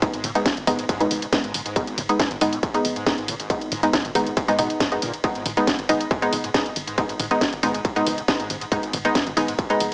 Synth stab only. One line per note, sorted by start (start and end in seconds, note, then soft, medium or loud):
0.02 0.23 G#3 medium
0.02 0.23 B3 medium
0.02 0.23 D#4 medium
0.35 0.48 G#3 medium
0.35 0.48 B3 medium
0.35 0.48 D#4 loud
0.67 0.81 G#3 medium
0.67 0.81 B3 medium
0.67 0.81 D#4 loud
1.01 1.21 G#3 loud
1.01 1.21 B3 medium
1.01 1.21 D#4 loud
1.33 1.46 G#3 medium
1.33 1.46 B3 medium
1.33 1.46 D#4 medium
1.76 1.97 G#3 medium
1.76 1.97 B3 medium
1.76 1.97 D#4 medium
2.09 2.22 G#3 medium
2.09 2.22 B3 medium
2.09 2.22 D#4 loud
2.41 2.55 G#3 medium
2.41 2.55 B3 medium
2.41 2.55 D#4 loud
2.74 2.95 G#3 medium
2.74 2.95 B3 medium
2.74 2.95 D#4 loud
3.06 3.20 G#3 medium
3.06 3.20 B3 medium
3.06 3.20 D#4 medium
3.50 3.71 G#3 medium
3.50 3.71 B3 medium
3.50 3.71 D#4 medium
3.83 3.95 G#3 medium
3.83 3.95 B3 medium
3.83 3.95 D#4 loud
4.15 4.28 G#3 loud
4.15 4.28 B3 medium
4.15 4.28 D#4 loud
4.48 4.57 G#3 loud
4.48 4.57 B3 medium
4.48 4.57 D#4 loud
4.59 4.79 G#3 medium
4.59 4.79 B3 medium
4.59 4.79 D#4 medium
4.92 5.04 G#3 medium
4.92 5.04 B3 medium
4.92 5.04 D#4 medium
5.24 5.44 G#3 medium
5.24 5.44 B3 medium
5.24 5.44 D#4 medium
5.57 5.69 G#3 medium
5.57 5.69 B3 medium
5.57 5.69 D#4 loud
5.89 6.02 G#3 loud
5.89 6.02 B3 medium
5.89 6.02 D#4 loud
6.22 6.43 G#3 medium
6.22 6.43 B3 medium
6.22 6.43 D#4 loud
6.54 6.68 G#3 medium
6.54 6.68 B3 medium
6.54 6.68 D#4 medium
6.98 7.18 G#3 medium
6.98 7.18 B3 medium
6.98 7.18 D#4 medium
7.31 7.43 G#3 loud
7.31 7.43 B3 medium
7.31 7.43 D#4 loud
7.63 7.76 G#3 loud
7.63 7.76 B3 medium
7.63 7.76 D#4 loud
7.96 8.17 G#3 medium
7.96 8.17 B3 medium
7.96 8.17 D#4 loud
8.28 8.41 G#3 medium
8.28 8.41 B3 medium
8.28 8.41 D#4 loud
8.72 8.92 G#3 medium
8.72 8.92 B3 medium
8.72 8.92 D#4 medium
9.05 9.17 G#3 medium
9.05 9.17 B3 medium
9.05 9.17 D#4 loud
9.37 9.50 G#3 loud
9.37 9.50 B3 medium
9.37 9.50 D#4 loud
9.70 9.90 G#3 medium
9.70 9.90 B3 medium
9.70 9.90 D#4 loud